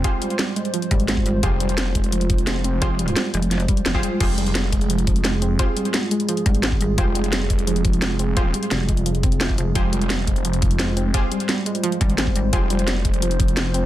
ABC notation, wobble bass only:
X:1
M:4/4
L:1/8
Q:1/4=173
K:Fm
V:1 name="Wobble bass" clef=bass
z4 z A,,,3 | z8 | F,,,2 z F,,,2 z F,,, z | z8 |
z4 z A,,,3 | z8 | z2 F,,,4- F,,, F,,, | z8 |
z4 z A,,,3 | z8 |]